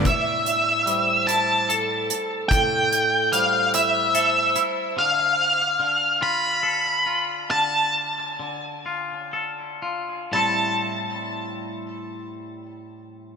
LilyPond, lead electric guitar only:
\new Staff \with { instrumentName = "Lead electric guitar" } { \time 6/8 \key a \minor \tempo 4. = 48 e''4. a''4. | g''4 f''8 e''4 r8 | f''4. b''4. | a''2~ a''8 r8 |
a''2. | }